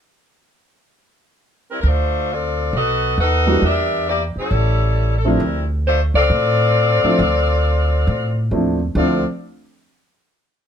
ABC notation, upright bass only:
X:1
M:4/4
L:1/8
Q:"Swing" 1/4=135
K:Dm
V:1 name="Upright bass" clef=bass
z8 | D,,4 =B,,,2 ^D,,2 | E,,3 z A,,,4 | D,,3 ^C,, A,,3 z |
D,,4 A,,2 _E,,2 | D,, z6 z |]